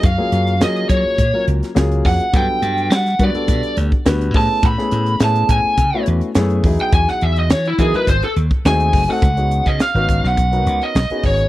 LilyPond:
<<
  \new Staff \with { instrumentName = "Lead electric guitar" } { \time 4/4 \key gis \minor \tempo 4 = 104 eis''4 dis''8 cis''4 r4 fis''8 | g''4 fis''8 d''4 r4 a''8 | b''4 a''8 gis''4 r4 r16 g''16 | gis''16 fis''16 e''16 dis''16 cis''16 e'16 gis'16 b'16 bis'16 a'16 r8 gis''8. fis''16~ |
\key des \mixolydian fis''8. ees''16 f''8. ges''4 ees''8. des''8 | }
  \new Staff \with { instrumentName = "Grand piano" } { \time 4/4 \key gis \minor r16 <fis ais cis' eis' gis'>8 r16 <fis ais cis' eis' gis'>4 r16 <fis ais cis' eis' ais'>8 r16 <fis ais cis' eis' gis'>8. r16 | <fis g b d' a'>4~ <fis g b d' a'>16 r16 <g b d' fis' b'>16 <g b d' fis' a'>4 r16 <g b d' fis' b'>8 <a b cis' e' gis'>8 | r16 <a b cis' e' gis'>8 r16 <a b cis' e' gis'>4 r16 <a b cis' e' fis'>8 r16 <a b cis' e' gis'>8 <fis b dis' e' gis'>8~ | <fis b dis' e' gis'>4 r8 <fis b dis' e' ais'>16 <fis b dis' e' ais'>16 r4 <a bis dis' fis' gis'>8 r16 <a bis dis' fis' a'>16 |
\key des \mixolydian r16 <ces' des' ees' ges' aes'>8. r16 <ces' des' ees' ges' ces''>8. r16 <ces' des' ees' ges' bes'>8. r16 <ces' des' ees' ges' aes'>8. | }
  \new Staff \with { instrumentName = "Slap bass" } { \clef bass \time 4/4 \key gis \minor fis,16 r16 fis,8 fis8 fis16 r16 ais,16 r16 cis,16 r16 cis,8 eis,16 r16 | g,16 r16 g,8 g8 g16 r16 b,16 r16 d,16 r16 d,8 a,16 r16 | a,16 r16 a,8 a,8 a,16 r16 cis16 r16 e,16 r16 fis,8 e,16 r16 | e,16 r16 e,8 e8 e16 r16 gis,,16 r16 dis,16 r16 dis,8 fis,,16 r16 |
\key des \mixolydian des,8. des16 r16 aes,,8 ces,8. des,16 r16 ces,16 r16 aes,,8 | }
  \new DrumStaff \with { instrumentName = "Drums" } \drummode { \time 4/4 <hh bd>8 hh16 hh16 <hh sn>16 hh16 <hh bd>8 <hh bd>8 hh16 <hh sn>16 <hh sn>16 hh16 <hho bd>16 hh16 | <hh bd>8 hh16 hh16 <hh sn>16 <hh sn>16 <hh bd>16 hh16 <hh bd>16 hh16 hh16 bd16 <hh sn>16 hh16 <hho bd>8 | <hh bd>16 sn16 hh16 hh16 <hh sn>16 hh16 <hh bd>8 <hh bd>8 hh16 hh16 <hh sn>16 hh16 <hho bd>16 hh16 | <hh bd>16 sn16 hh16 hh16 <hh sn>16 hh16 <hh bd>16 hh16 <hh bd>16 hh16 hh16 bd16 <hh sn>16 hh16 <hho bd>8 |
<hh bd>16 hh16 hh16 <hh bd>16 <hh sn>16 hh16 <hh bd>16 sn16 <hh bd>16 hh16 hh16 hh16 <hh sn>16 hh16 <hho bd>16 hh16 | }
>>